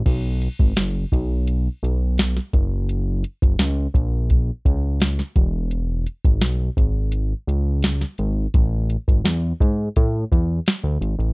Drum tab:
CC |x---------------|----------------|----------------|----------------|
HH |x-xxx-x-x-x-x-x-|x-xxx-x-x-x-x-x-|x-xxx-x-x-x-x-x-|x-xxx-x-x-x-x-xx|
SD |----o-------oo--|----o-------oo--|----o-------oo--|----o-------o---|
BD |o--o--o-------o-|---o--o-o-o---o-|---o--o---------|o--o--o-o-o-----|